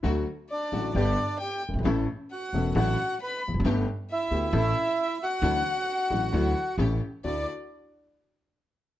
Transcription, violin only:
\new Staff \with { instrumentName = "Violin" } { \time 4/4 \key d \major \tempo 4 = 133 r4 d''4 d''4 g''8 r8 | r4 fis''4 fis''4 b''8 r8 | r4 e''4 e''4. fis''8~ | fis''2. r4 |
d''8 r2. r8 | }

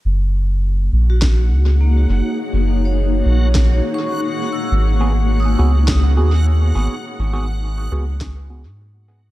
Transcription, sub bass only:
\new Staff \with { instrumentName = "Sub bass" } { \clef bass \time 4/4 \key fis \mixolydian \tempo 4 = 103 fis,,4. ais,,4 cis,4 fis,,16 r16 | r16 fis,,4~ fis,,16 ais,,4 r4. | gis,,4. cis,4 dis,4 gis,,16 r16 | r16 gis,,4~ gis,,16 cis,4~ cis,16 gis,4~ gis,16 | }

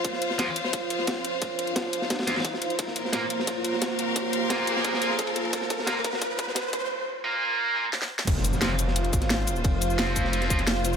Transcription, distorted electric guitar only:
\new Staff \with { instrumentName = "Distorted electric guitar" } { \time 4/4 \key bes \minor \tempo 4 = 175 r4 <f c' f'>8 r2 r8 | r2 r8 <f c' f'>8 r4 | r4 <bes f' bes'>8 r2 r8 | r4 <bes f' bes'>4. <bes f' bes'>8 r4 |
r4 <bes f' bes'>8 r2 r8 | r4 <bes f' bes'>4. <bes f' bes'>8 r4 | r4 <f c' f'>8 r2 r8 | r4 <f c' f'>4. <f c' f'>8 r4 | }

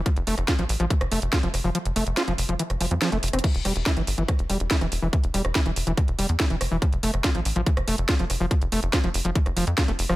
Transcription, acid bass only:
\new Staff \with { instrumentName = "Acid bass" } { \clef bass \time 4/4 \key f \lydian \tempo 4 = 142 f16 r16 a16 r16 f'16 f16 r16 f16 e16 r16 a16 r16 f'16 f16 r16 f16 | f16 r16 a16 r16 f'16 f16 r16 f16 e16 r16 f16 f16 f16 a16 r16 c'16 | e16 r16 g16 r16 e'16 e16 r16 e16 d16 r16 g16 r16 e'16 e16 r16 e16 | e16 r16 g16 r16 e'16 e16 r16 e16 d16 r16 g16 r16 e'16 e16 r16 e16 |
f16 r16 a16 r16 f'16 f16 r16 f16 e16 r16 a16 r16 f'16 f16 r16 f16 | f16 r16 a16 r16 f'16 f16 r16 f16 e16 r16 f16 r16 f'16 a16 r16 f16 | }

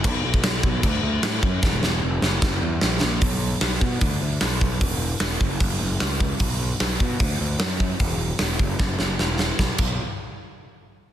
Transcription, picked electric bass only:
\new Staff \with { instrumentName = "Picked electric bass" } { \clef bass \time 4/4 \key e \lydian \tempo 4 = 151 b,,8 b,,8 b,,8 b,,8 d,8 d,8 a,8 fis,8 | e,,8 e,,8 eis,,8 fis,,8 fis,,8 e,8 ais,,8 ais,,8 | b,,4 b,,8 b,8 d,8 d,8 b,,4 | e,,4 e,,8 fis,,8 fis,,8 fis,,8 cis,4 |
b,,4 b,,8 b,8 d,8 d,8 fis,4 | e,,4 e,,8 fis,,8 fis,,8 fis,,8 e,,4 | b,,8 b,,8 r2. | }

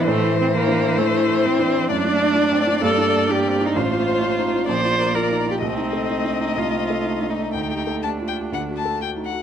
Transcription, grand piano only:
\new Staff \with { instrumentName = "Grand piano" } { \time 4/4 \key a \phrygian \tempo 4 = 129 \tuplet 3/2 { a,8 e'8 c''8 e'8 d'8 e'8 e8 e'8 c''8 e'8 d'8 e'8 } | \key d \phrygian \tuplet 3/2 { fis,8 d'8 d''8 d'8 c'8 d'8 g,8 d'8 d''8 d'8 c'8 d'8 } | \tuplet 3/2 { a,,8 f'8 c''8 f'8 ees'8 f'8 bes,,8 f'8 bes'8 f'8 ees'8 f'8 } | \tuplet 3/2 { c,8 ees'8 a'8 ees'8 d'8 ees'8 c,8 c'8 a'8 ees'8 d'8 ees'8 } |
\tuplet 3/2 { d,8 g'8 a'8 g'8 f'8 g'8 d,8 fis'8 a'8 fis'8 ees'8 fis'8 } | }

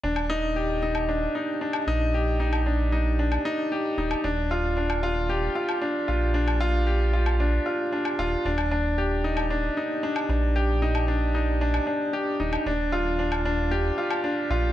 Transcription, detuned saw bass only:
\new Staff \with { instrumentName = "Detuned saw bass" } { \clef bass \time 4/4 \key ees \major \tempo 4 = 114 ees,,2~ ees,,8 r4 bes,,8~ | bes,,2~ bes,,8 r4 ees,,8 | ees,,2~ ees,,8 r4 bes,,8~ | bes,,2~ bes,,8 r4 ees,,8 |
ees,,2~ ees,,8 r4 bes,,8~ | bes,,2~ bes,,8 r4 ees,,8 | ees,,2~ ees,,8 r4 bes,,8 | }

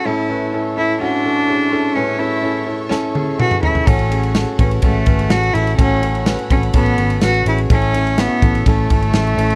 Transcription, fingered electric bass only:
\new Staff \with { instrumentName = "Fingered electric bass" } { \clef bass \time 4/4 \key fis \minor \tempo 4 = 125 r1 | r1 | a,,4~ a,,16 r16 a,,8 a,,8 gis,,8 a,,8 a,,8 | a,,4~ a,,16 r16 a,,8 a,,8 gis,,8 a,,8 a,,8 |
a,,4~ a,,16 r16 a,,8 a,,8 gis,,8 a,,8 a,,8 | }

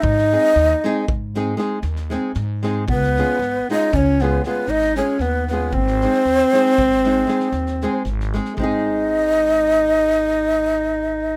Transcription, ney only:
\new Staff \with { instrumentName = "Ney" } { \time 11/8 \key gis \major \tempo 4 = 116 dis''2 r2. r8 | b'4. dis''8 cis''8 b'8 b'8 dis''8 cis''8 b'8 b'8 | bis'1~ bis'8 r4 | dis''1~ dis''4. | }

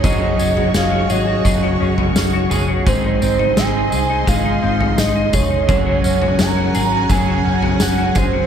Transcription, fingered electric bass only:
\new Staff \with { instrumentName = "Fingered electric bass" } { \clef bass \time 4/4 \key ges \lydian \tempo 4 = 85 ges,,8 ges,,8 ges,,8 aes,,8 ges,,8 ges,,8 ges,,8 ges,,8 | aes,,8 aes,,8 aes,,8 c,8 aes,,8 aes,,8 aes,,8 f,,8 | ges,,8 ges,,8 ges,,8 aes,,8 ges,,8 ges,,8 ges,,8 ges,,8 | }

